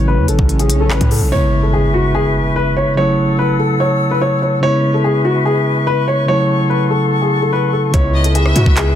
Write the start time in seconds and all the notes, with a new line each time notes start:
Already playing: A1 C#3 F#3 A3 E4, swell
0.08 B4
0.18 E2
0.28 A1 A4, closed hi-hat
0.39 A1, kick
0.49 closed hi-hat
0.59 G#4, closed hi-hat
0.70 B1, closed hi-hat
0.80 A4
0.85 A1
0.90 B4, clap
1.01 A2, kick, closed hi-hat
1.11 A4, open hi-hat
1.21 B1
1.29 C#3 G#3 B3 B4 C#5 E5 C#6, impact
1.35 E4
1.63 A4
1.73 G#4
1.94 F#4
2.15 G#4
2.56 B4
2.77 C#5
2.95 C#3 F#3 A3 A4 C#5 F#5 E6
3.01 E4
3.39 B4
3.59 A4
3.80 C#5
4.11 B4
4.21 C#5
4.42 C#5
4.60 C#3 G#3 B3 B4 C#5 E5 C#6
4.66 E4
4.94 A4
5.04 G#4
5.25 F#4
5.46 G#4
5.87 B4
6.08 C#5
6.26 C#3 F#3 A3 A4 C#5 F#5
6.31 E4
6.70 B4
6.91 A4
7.22 G#4
7.42 A4
7.53 B4
7.73 A4
7.91 C#2 C#3 G#3 B3 B4 C#5 E5, kick, closed hi-hat
7.97 E4
8.14 D#5
8.24 A4, closed hi-hat
8.35 G#4 E5, closed hi-hat
8.46 cross-stick
8.56 G#2 F#4, closed hi-hat
8.66 C#2, kick
8.77 G#4, clap, closed hi-hat